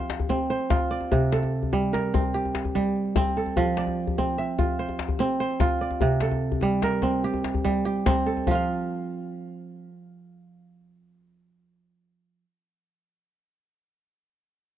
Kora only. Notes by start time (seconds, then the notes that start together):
Already playing: F3 C4 F4 C5 E5
0.30 C4
0.50 C5
0.70 F4
0.91 D5
1.12 C3
1.32 A4
1.73 G3
1.93 A#4
2.14 C4
2.34 G4
2.75 G3
3.16 C4
3.37 A4
3.57 F3
3.78 D5
4.18 C4
4.38 E5
4.59 F4
4.79 C5
5.20 C4
5.40 C5
5.61 F4
5.81 D5
6.02 C3
6.22 A4
6.62 G3
6.83 A#4
7.03 C4
7.24 G4
7.65 G3
7.85 G4
8.06 C4
8.26 A4
8.47 F3 F4
8.55 F5